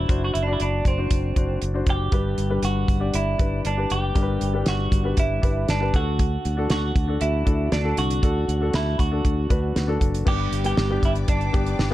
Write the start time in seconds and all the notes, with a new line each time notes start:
Already playing: D4 E4 F#4 A4 C5
0.08 F#1 D4 F#4 C5, kick, closed hi-hat
0.25 F#4
0.34 F#1 E4, closed hi-hat
0.43 D4
0.47 D4 F#4 D5
0.53 E4
0.60 F#1 D4, closed hi-hat
0.85 F#1 C4, kick, closed hi-hat
0.98 D4 F#4 C5
1.11 F#1, kick, closed hi-hat
1.36 F#1 D4 F#4 C5, kick, closed hi-hat
1.62 F#1, closed hi-hat
1.74 D4 F#4 C5
1.86 F#1 G4, kick, closed hi-hat
2.12 G1 G2 D4 G4 B4, kick, closed hi-hat
2.38 G1, closed hi-hat
2.50 G3 D4 B4
2.63 G1 F#4, closed hi-hat
2.88 G1, kick, closed hi-hat
3.00 D4 G4 D5
3.14 G1 E4, closed hi-hat
3.38 G1 D4 G4 B4, kick, closed hi-hat
3.65 G1 D4, closed hi-hat
3.77 D4 G4 B4
3.90 F#1 G4, closed hi-hat
4.14 G1 G2 D4 G4 A#4, kick, closed hi-hat
4.22 B4
4.41 G1, closed hi-hat
4.53 G3 D4 B4
4.66 G1 F#4, snare, closed hi-hat
4.92 G1, kick, closed hi-hat
5.04 D4 G4 B4
5.17 G1 E4, kick, closed hi-hat
5.42 G1 D4 G4 B4, kick, closed hi-hat
5.68 G1 D4, snare, closed hi-hat
5.80 D4 G4 B4
5.93 D2 D3 D4 F#4 A4, kick, closed hi-hat
6.19 kick, closed hi-hat
6.45 D2, closed hi-hat
6.57 D4 F#4 A4
6.70 D2 F#4, snare, closed hi-hat
6.95 D2, kick, closed hi-hat
7.08 D4 F#4 A4
7.21 D2 E4, closed hi-hat
7.45 D2 D4 F#4 A4, kick, closed hi-hat
7.72 D2 D4, snare, closed hi-hat
7.83 D4 F#4 A4
7.97 C2 D3 F#4, closed hi-hat
8.10 closed hi-hat
8.22 D2 D4 F#4 A4, kick, closed hi-hat
8.48 D2, closed hi-hat
8.61 D4 F#4 A4
8.74 D2 E4, snare, closed hi-hat
8.99 D2 F#4, kick, closed hi-hat
9.11 D4 F#4 A4
9.25 D2, kick, closed hi-hat
9.49 D2 D4 F#4 B4, kick, closed hi-hat
9.76 D2, snare, closed hi-hat
9.87 D4 F#4 A4
10.01 F#1, kick, closed hi-hat
10.14 closed hi-hat
10.25 G1 G2 B3 D4 G4 B4 D5 G5 D6, kick, crash
10.52 G1, closed hi-hat
10.64 B3 D4 G4, closed hi-hat
10.77 G1, snare
10.90 B3 D4 G4
11.03 G1 E4, kick, closed hi-hat
11.15 closed hi-hat
11.28 G1 D4, kick, closed hi-hat
11.41 closed hi-hat
11.53 G1 B3 D4 G4, kick, closed hi-hat
11.66 closed hi-hat
11.79 G1, snare
11.90 B3